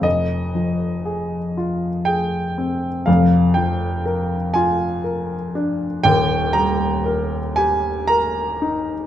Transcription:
\new Staff \with { instrumentName = "Grand piano" } { \time 3/4 \key ees \major \tempo 4 = 60 << { ees''2 g''4 | f''8 g''4 aes''4. | g''8 bes''4 aes''8 bes''4 | } \\ { <f,, f,>8 f8 aes'8 f'8 aes'8 c'8 | <f,, f,>8 f8 bes'8 f'8 bes'8 d'8 | <ees,, ees,>8 g8 bes'8 g'8 bes'8 ees'8 | } >> }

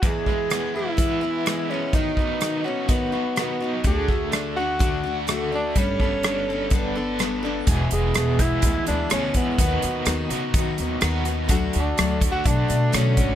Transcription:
<<
  \new Staff \with { instrumentName = "Tenor saxophone" } { \time 4/4 \key e \mixolydian \tempo 4 = 126 gis'4. e'2 cis'8 | dis'4. cis'8 b4 b8. r16 | gis'4 r8 fis'4. r8 d'8 | cis'2 b4. r8 |
r8 gis4 e'4 d'8 cis'8 b8~ | b4. r2 r8 | r8 d'8~ \tuplet 3/2 { d'8. r16 fis'8 } d'4 cis'4 | }
  \new Staff \with { instrumentName = "Overdriven electric guitar" } { \time 4/4 \key e \mixolydian e,8 gis8 b8 e'8 b8 e'8 gis8 b8 | dis8 b8 dis'8 fis'8 dis'8 fis'8 b8 dis'8 | d8 a8 d'8 fis'8 d'8 fis'8 a8 d'8 | g8 b8 d'8 a'8 d'8 a'8 b8 d'8 |
<e, b, e gis b gis'>4. <e, b, e gis b gis'>4. <e, b, e gis b gis'>4 | <dis b dis' fis'>4. <dis b dis' fis'>4. <dis b dis' fis'>4 | <d a d' fis'>4. <d a d' fis'>4. <d a d' fis'>4 | }
  \new Staff \with { instrumentName = "Steel-string acoustic guitar" } { \time 4/4 \key e \mixolydian <e gis b e'>8 <gis b e'>8 <e gis b e'>8 <gis b e'>8 <e gis b e'>8 <gis b e'>8 <e gis b e'>8 <gis b e'>8 | <dis b dis' fis'>8 <b dis' fis'>8 <dis b dis' fis'>8 <b dis' fis'>8 <dis b dis' fis'>8 <b dis' fis'>8 <dis b dis' fis'>8 <b dis' fis'>8 | <d a d' fis'>8 <a d' fis'>8 <d a d' fis'>8 <a d' fis'>8 <d a d' fis'>8 <a d' fis'>8 <d a d' fis'>8 <a d' fis'>8 | <g b d' a'>8 <b d' a'>8 <g b d' a'>8 <b d' a'>8 <g b d' a'>8 <b d' a'>8 <g b d' a'>8 <b d' a'>8 |
<e, b, e gis b e'>8 <e gis b e'>8 <e, b, e gis b e'>8 <e gis b e'>8 <e gis b e'>8 <e gis b e'>8 <e, b, e gis b e'>8 <e gis b e'>8 | <dis b dis' fis'>8 <b dis' fis'>8 <dis b dis' fis'>8 <b dis' fis'>8 <dis b dis' fis'>8 <b dis' fis'>8 <dis b dis' fis'>8 <b dis' fis'>8 | <d fis a d' fis'>8 <a d' fis'>8 <d fis a d' fis'>8 <a d' fis'>8 <fis a d' fis'>8 <a d' fis'>8 <d fis a d' fis'>8 <a d' fis'>8 | }
  \new Staff \with { instrumentName = "Upright bass" } { \clef bass \time 4/4 \key e \mixolydian r1 | r1 | d,1 | g,,1 |
e,,8 e,,8 e,,4 d,8 d,8 d,8 e,8 | dis,8 dis,8 dis,8 cis8 dis8 dis,8 dis,4 | d,8 d,8 d,4 b,8 b,8 b,8 gis,,8 | }
  \new DrumStaff \with { instrumentName = "Drums" } \drummode { \time 4/4 <hh bd>8 bd8 <hh ss>4 <hh bd>4 <hh ss>4 | <hh bd>8 bd8 <hh ss>4 <hh bd>4 <hh ss>4 | <hh bd>8 bd8 <hh ss>4 <hh bd>4 <hh ss>4 | <hh bd>8 bd8 <hh ss>4 <hh bd>4 <hh ss>4 |
<hh bd>8 hh8 <hh ss>8 <hh bd>8 <hh bd>8 hh8 <hh ss>8 <hh bd>8 | <hh bd>8 hh8 <hh ss>8 hh8 <hh bd>8 hh8 <hh ss>8 hh8 | <hh bd>8 hh8 <hh ss>8 <hh bd>8 <hh bd>8 hh8 <hh ss>8 <hh bd>8 | }
>>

